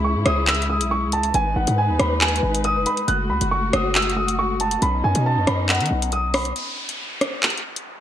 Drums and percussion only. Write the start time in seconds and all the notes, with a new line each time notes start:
0.26 cross-stick, closed hi-hat
0.47 clap, closed hi-hat
0.55 closed hi-hat
0.62 closed hi-hat
0.81 closed hi-hat
1.12 closed hi-hat
1.23 closed hi-hat
1.34 closed hi-hat
1.67 closed hi-hat
2.00 cross-stick, closed hi-hat
2.21 clap, closed hi-hat
2.28 closed hi-hat
2.36 closed hi-hat
2.55 closed hi-hat
2.64 closed hi-hat
2.86 closed hi-hat
2.97 closed hi-hat
3.08 closed hi-hat
3.41 closed hi-hat
3.73 cross-stick, closed hi-hat
3.95 clap, closed hi-hat
4.02 closed hi-hat
4.10 closed hi-hat
4.28 closed hi-hat
4.60 closed hi-hat
4.71 closed hi-hat
4.82 closed hi-hat
5.15 closed hi-hat
5.47 cross-stick, closed hi-hat
5.69 clap, closed hi-hat
5.75 closed hi-hat
5.81 closed hi-hat
5.86 closed hi-hat
6.02 closed hi-hat
6.12 closed hi-hat
6.34 cross-stick, open hi-hat
6.45 closed hi-hat
6.56 closed hi-hat
6.89 closed hi-hat
7.21 cross-stick, closed hi-hat
7.43 clap, closed hi-hat
7.50 closed hi-hat
7.58 closed hi-hat
7.76 closed hi-hat